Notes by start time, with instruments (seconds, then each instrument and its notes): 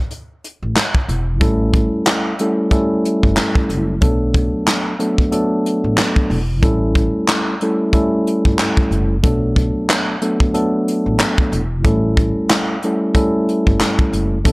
0.11 closed hi-hat
0.44 closed hi-hat
0.63 upright bass A1
0.76 snare, clap, closed hi-hat
0.95 kick
1.08 upright bass E1, closed hi-hat
1.40 upright bass A1, tine electric piano G3 A3 C#4 E4 A4, kick, closed hi-hat
1.74 kick, closed hi-hat
2.07 snare, clap, closed hi-hat
2.39 tine electric piano G3 A3 C#4 E4 A4, closed hi-hat
2.71 tine electric piano G3 A3 C#4 E4 A4, kick, closed hi-hat
3.05 closed hi-hat
3.23 upright bass G1, kick
3.37 snare, clap, closed hi-hat
3.55 kick
3.69 upright bass F#1, closed hi-hat
4.01 upright bass B1, tine electric piano F#3 A3 B3 D4 A4, kick, closed hi-hat
4.34 kick, closed hi-hat
4.67 snare, clap, closed hi-hat
4.99 tine electric piano F#3 A3 B3 D4 A4, closed hi-hat
5.18 kick
5.31 tine electric piano F#3 A3 B3 D4 A4, closed hi-hat
5.66 closed hi-hat
5.84 upright bass A1
5.98 snare, clap, closed hi-hat
6.16 kick
6.30 upright bass E1, open hi-hat
6.62 upright bass A1, tine electric piano G3 A3 C#4 E4 A4, kick, closed hi-hat
6.95 kick, closed hi-hat
7.28 snare, clap, closed hi-hat
7.61 tine electric piano G3 A3 C#4 E4 A4, closed hi-hat
7.93 tine electric piano G3 A3 C#4 E4 A4, kick, closed hi-hat
8.27 closed hi-hat
8.45 upright bass G1, kick
8.59 snare, clap, closed hi-hat
8.77 kick
8.91 upright bass F#1, closed hi-hat
9.23 upright bass B1, tine electric piano F#3 A3 B3 D4 A4, kick, closed hi-hat
9.56 kick, closed hi-hat
9.90 snare, clap, closed hi-hat
10.21 tine electric piano F#3 A3 B3 D4 A4, closed hi-hat
10.40 kick
10.53 tine electric piano F#3 A3 B3 D4 A4, closed hi-hat
10.88 closed hi-hat
11.06 upright bass A1
11.20 snare, clap, closed hi-hat
11.38 kick
11.52 upright bass E1, closed hi-hat
11.84 upright bass A1, tine electric piano G3 A3 C#4 E4 A4, kick, closed hi-hat
12.17 kick, closed hi-hat
12.50 snare, clap, closed hi-hat
12.83 tine electric piano G3 A3 C#4 E4 A4, closed hi-hat
13.15 tine electric piano G3 A3 C#4 E4 A4, kick, closed hi-hat
13.49 closed hi-hat
13.67 upright bass G1, kick
13.80 snare, clap, closed hi-hat
13.99 kick
14.13 upright bass F#1, closed hi-hat
14.44 upright bass B1, tine electric piano F#3 A3 B3 D4 A4, kick, closed hi-hat